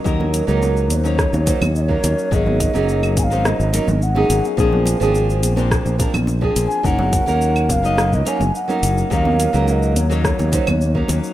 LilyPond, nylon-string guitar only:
\new Staff \with { instrumentName = "Nylon-string guitar" } { \time 4/4 \key ees \dorian \tempo 4 = 106 <ges bes des' ees' bes'>8. <ges bes des' ees' bes'>4 <ges bes des' ees' des''>8. <ges bes des' ees' c''>16 r8 <ges bes des' ees' bes'>8. | <ges bes des' ees' aes'>8. <ges bes des' ees' aes'>4 <ges bes des' ees' c''>8. <ges bes des' ees' bes'>16 r8 <ges bes des' ees' aes'>8. | <f bes c' d' aes'>8. <f bes c' d' aes'>4 <f bes c' d' c''>8. <f bes c' d' bes'>16 r8 <f bes c' d' aes'>8. | <ges bes des' ees' bes'>8. <ges bes des' ees' bes'>4 <ges bes des' ees' ees''>8. <ges bes des' ees' des''>16 r8 <ges bes des' ees' bes'>8. |
<ges bes des' ees' bes'>8. <ges bes des' ees' bes'>4 <ges bes des' ees' des''>8. <ges bes des' ees' c''>16 r8 <ges bes des' ees' bes'>8. | }